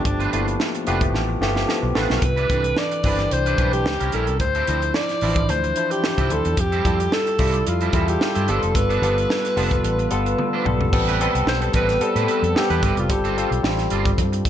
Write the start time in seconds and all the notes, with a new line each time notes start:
Already playing: F3 A3 B3 G4
0.05 G1 D4, muted clean electric guitar stroke, kick, closed hi-hat
0.20 A3 D4 F4 B4, closed hi-hat
0.32 G1 F3 A3 A#3 D4 E4 F4 B4, closed hi-hat
0.40 B3
0.47 muted clean electric guitar stroke, closed hi-hat
0.60 snare
0.74 muted clean electric guitar stroke, closed hi-hat
0.87 F1 F3 A3 B3 D4 F4 G4 B4, closed hi-hat
1.01 muted clean electric guitar stroke, kick, closed hi-hat
1.14 A1, muted clean electric guitar stroke, snare
1.29 muted clean electric guitar stroke
1.41 G1 F3 A3 B3 G4, snare
1.56 muted clean electric guitar stroke, snare
1.68 muted clean electric guitar stroke, snare
1.83 B1, muted clean electric guitar stroke
1.95 A1 F3 A3 B3 D4 F4 A4 B4, snare
2.09 B1, muted clean electric guitar stroke, snare
2.17 A#4
2.22 C2 B4, muted clean electric guitar stroke, kick, closed hi-hat
2.36 G3 D4 E4 B4, closed hi-hat
2.49 C2 E3 G3 C4 D4 E4 A4 B4, kick, closed hi-hat
2.57 B4
2.64 muted clean electric guitar stroke, closed hi-hat
2.77 D5, snare
2.91 muted clean electric guitar stroke, closed hi-hat
3.03 G1 E3 G3 C4 D4 E4 B4 C5, kick, open hi-hat
3.12 D5
3.19 muted clean electric guitar stroke, snare, closed hi-hat
3.31 C2 C5, muted clean electric guitar stroke, closed hi-hat
3.46 G3 D4 E4 B4, closed hi-hat
3.58 B1 E3 G3 C4 D4 E4 B4 C5, kick, closed hi-hat
3.73 G4, muted clean electric guitar stroke, closed hi-hat
3.85 C#2, muted clean electric guitar stroke, snare
4.00 C2 G3 C#4 E4 A#4, closed hi-hat
4.12 A#1 G3 C#4 E4 A4 A#4, closed hi-hat
4.27 C2, muted clean electric guitar stroke, closed hi-hat
4.40 D2 C5, muted clean electric guitar stroke, kick, closed hi-hat
4.55 F3 C4 E4 A4, closed hi-hat
4.67 D2 F3 C4 D4 E4 A4 C5, closed hi-hat
4.82 muted clean electric guitar stroke, closed hi-hat
4.94 D5, snare
5.09 muted clean electric guitar stroke, snare, closed hi-hat
5.21 A1 E3 F3 C4 D4 E4 A4 C5, open hi-hat
5.29 F3
5.36 muted clean electric guitar stroke, kick, closed hi-hat
5.49 D2 C5, muted clean electric guitar stroke, closed hi-hat
5.63 muted clean electric guitar stroke, closed hi-hat
5.76 F3 D4 E4 C5, closed hi-hat
5.90 G4, muted clean electric guitar stroke, closed hi-hat
6.03 muted clean electric guitar stroke, snare
6.18 C2 F3 C4 E4 A4, kick, closed hi-hat
6.30 D2 F3 D4 E4 A4 C5, muted clean electric guitar stroke, closed hi-hat
6.45 E2, muted clean electric guitar stroke, closed hi-hat
6.57 F2 G4, muted clean electric guitar stroke, kick, closed hi-hat
6.72 G3 C4 E4 A4, closed hi-hat
6.84 F2 G3 C4 E4 F4 A4, kick, closed hi-hat
7.00 muted clean electric guitar stroke, closed hi-hat
7.12 A4, snare
7.27 muted clean electric guitar stroke, closed hi-hat
7.39 C2 G3 C4 E4 F4 A4, kick, open hi-hat
7.54 muted clean electric guitar stroke, closed hi-hat
7.67 F2 F4, muted clean electric guitar stroke, closed hi-hat
7.81 G3 C4 E4 A4, closed hi-hat
7.93 E2 G3 C4 E4 F4 G#4 A4, kick, closed hi-hat
8.01 A4
8.08 G4, muted clean electric guitar stroke, closed hi-hat
8.21 muted clean electric guitar stroke, snare
8.35 G2 G3 C4 E4 A4, closed hi-hat
8.47 G1 F3 G3 B3 D4 F4 A4, closed hi-hat
8.62 F1, muted clean electric guitar stroke, closed hi-hat
8.74 G1 B4, muted clean electric guitar stroke, kick, closed hi-hat
8.89 F3 B3 D4 A4, closed hi-hat
9.02 G1 F3 G3 B3 D4 F4 A4, closed hi-hat
9.17 muted clean electric guitar stroke, closed hi-hat
9.30 snare
9.44 muted clean electric guitar stroke, snare, closed hi-hat
9.56 F1 F3 G3 B3 D4 F4 A4, open hi-hat
9.71 muted clean electric guitar stroke, kick, closed hi-hat
9.84 A1, muted clean electric guitar stroke, closed hi-hat
9.99 muted clean electric guitar stroke, closed hi-hat
10.10 G1 G3 B3 F4 A4, closed hi-hat
10.26 muted clean electric guitar stroke, closed hi-hat
10.39 muted clean electric guitar stroke, high tom
10.53 F3 B3 D4 A4
10.65 B1 G3 B3 F4 A4, mid tom
10.80 muted clean electric guitar stroke, floor tom
10.92 A1 G3 B3 C4 A4, muted clean electric guitar stroke, kick, crash
11.08 G3 C4 E4 B4, closed hi-hat
11.20 G3 B3 C4 E4 A4 B4, closed hi-hat
11.35 C2, muted clean electric guitar stroke, closed hi-hat
11.46 B1 C5, snare
11.61 G3 B3 C4 A4, muted clean electric guitar stroke, closed hi-hat
11.73 A1 G3 C4 E4 B4, kick, closed hi-hat
11.89 muted clean electric guitar stroke, snare, closed hi-hat
12.00 G3 B3 C4 A4, muted fingered electric bass stroke, muted clean electric guitar stroke, closed hi-hat
12.16 A2 G3 C4 E4 B4, closed hi-hat
12.27 G3 C4 E4 B4, closed hi-hat
12.42 F2, muted clean electric guitar stroke, closed hi-hat
12.54 G3 B3 C4 G4 A4, muted clean electric guitar stroke, snare
12.69 E2 G3 C4 E4 B4, closed hi-hat
12.82 G1 G3 C4 E4 B4, kick, closed hi-hat
12.96 F1 F4, muted clean electric guitar stroke, closed hi-hat
13.09 G1 G3 C4 F4 G4 A4, muted clean electric guitar stroke, kick, closed hi-hat
13.24 G3 C4 F4 A4, closed hi-hat
13.36 G3 C4 F4 A4, closed hi-hat
13.51 B1, muted clean electric guitar stroke, closed hi-hat
13.63 A1 G3 C4 F4 G4, snare
13.79 muted clean electric guitar stroke, snare, closed hi-hat
13.90 G1 G3 C4 F4 A4, closed hi-hat
14.05 muted clean electric guitar stroke, kick, closed hi-hat
14.18 G2, muted clean electric guitar stroke, kick, closed hi-hat
14.33 muted clean electric guitar stroke, closed hi-hat
14.45 kick, closed hi-hat